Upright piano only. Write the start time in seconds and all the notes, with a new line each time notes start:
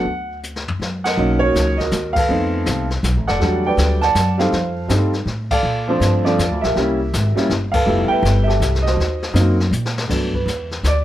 Already playing: F#5
1.04 A#4 D#5 F#5
1.17 F#3 A#3 C#4 D#4
1.39 F#4 A#4 C#5
1.77 D#5
1.81 F#4 A#4
2.13 A4 B4 F5
2.29 A3 B3 C4 D#4
3.28 A4 D5 F#5
3.40 F#3 G3 A3 D4
3.66 B4 D5 G5
4.01 D5 F#5 A5
4.38 G3 A3 C4 D#4 A4 C5 F5
4.88 G3 A3 C4 D#4
5.51 A4 D5 F5
5.87 F3 A3 C4 D4 F4 A4 C5
6.24 F3 A3 C4 D4 F4 A4 D5
6.61 G4 A#4 E5
6.75 G3 A#3 C#4 E4
7.36 G3 A#3 C#4 E4
7.72 A4 B4 F5
7.86 G3 A3 B3 E4
8.08 E5 G5
8.12 B4
8.43 E5
8.47 G4 A4
8.82 D#5
8.86 F#4 C5
9.33 F#3 A#3 C4 D#4
10.08 F#3 A3 B3 D4
10.34 B4
10.87 D5